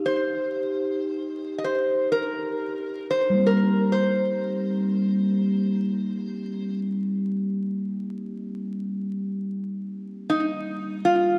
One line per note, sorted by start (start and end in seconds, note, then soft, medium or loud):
0.00 7.75 D#4 medium
0.00 7.77 G4 soft
0.06 1.58 C5 medium
1.58 1.66 D#5 soft
1.64 2.11 C5 medium
2.12 3.07 A#4 medium
3.11 3.47 C5 medium
3.30 11.12 G3 medium
3.34 11.14 A#3 soft
3.39 11.17 C4 soft
3.47 3.93 A#4 medium
3.92 6.79 C5 medium
10.30 11.08 D#4 medium
11.05 11.39 F4 medium